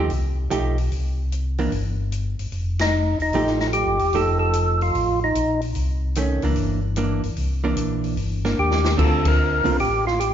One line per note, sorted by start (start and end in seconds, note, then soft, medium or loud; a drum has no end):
0.00 0.10 A3 medium
0.00 0.10 D#4 medium
0.00 0.10 G4 medium
0.10 0.49 C2 medium
0.10 open hi-hat soft
0.50 0.89 B1 medium
0.50 0.75 F3 medium
0.50 0.75 A3 medium
0.50 0.76 D#4 medium
0.50 0.76 G4 medium
0.50 closed hi-hat soft
0.78 open hi-hat soft
0.92 1.69 C2 medium
0.92 open hi-hat soft
1.32 closed hi-hat medium
1.58 1.71 E3 medium
1.58 1.71 A#3 medium
1.58 1.71 D4 medium
1.58 open hi-hat soft
1.72 2.36 G1 medium
1.72 open hi-hat soft
2.12 closed hi-hat soft
2.39 2.46 G1 soft
2.39 open hi-hat soft
2.52 3.16 F1 medium
2.52 open hi-hat soft
2.79 3.18 D#4 medium
2.79 snare medium
2.79 ride medium
3.20 3.33 E1 medium
3.20 3.59 D#4 medium
3.20 open hi-hat soft
3.33 3.84 A1 medium
3.33 3.96 F3 medium
3.33 3.96 A3 medium
3.33 3.96 D#4 medium
3.33 3.97 G4 medium
3.33 open hi-hat soft
3.47 snare soft
3.60 3.67 D#4 medium
3.60 snare soft
3.73 4.15 G4 medium
3.73 closed hi-hat medium
3.87 4.00 G1 medium
3.99 4.13 E1 medium
3.99 open hi-hat soft
4.13 4.91 F1 medium
4.13 5.28 F3 soft
4.13 5.28 A3 soft
4.13 5.28 D#4 medium
4.13 5.28 G4 medium
4.13 4.38 A4 loud
4.13 open hi-hat soft
4.39 4.82 A4 loud
4.53 closed hi-hat medium
4.81 5.20 F4 medium
4.81 open hi-hat soft
4.95 5.33 A1 medium
4.95 open hi-hat soft
5.24 5.61 D#4 medium
5.35 5.73 A#1 medium
5.35 closed hi-hat medium
5.61 open hi-hat soft
5.75 6.39 C2 medium
5.75 open hi-hat soft
6.15 6.41 D#3 medium
6.15 6.41 A3 medium
6.15 6.42 C#4 medium
6.15 closed hi-hat medium
6.42 6.56 C#2 medium
6.42 6.78 E3 medium
6.42 6.79 A#3 medium
6.42 6.79 D4 medium
6.42 open hi-hat soft
6.56 7.20 G1 medium
6.56 open hi-hat soft
6.96 7.21 E3 medium
6.96 7.22 A#3 medium
6.96 7.22 D4 medium
6.96 closed hi-hat medium
7.23 7.31 G1 soft
7.23 open hi-hat soft
7.36 7.75 C2 medium
7.36 open hi-hat soft
7.64 8.15 E3 medium
7.64 8.16 A#3 medium
7.64 8.16 D4 medium
7.76 8.15 A#1 medium
7.76 closed hi-hat medium
8.04 open hi-hat soft
8.17 8.55 G1 medium
8.17 open hi-hat soft
8.45 8.96 A#3 medium
8.45 8.96 D4 medium
8.45 snare soft
8.58 8.96 D#2 medium
8.58 8.97 G4 medium
8.71 snare medium
8.84 snare medium
8.97 9.62 D2 medium
8.97 9.60 D3 medium
8.97 9.60 C4 medium
8.97 9.61 F4 medium
8.97 9.27 A4 medium
8.97 kick medium
8.97 crash medium
9.25 9.77 A#4 loud
9.25 kick medium
9.25 ride medium
9.64 9.79 C2 medium
9.64 9.77 D3 medium
9.64 9.78 A3 medium
9.64 9.78 C4 medium
9.64 9.78 F4 medium
9.64 open hi-hat soft
9.80 10.34 A1 medium
9.80 10.05 G4 medium
9.80 open hi-hat soft
10.07 10.19 F4 medium
10.07 snare soft
10.20 10.34 G4 medium
10.20 closed hi-hat soft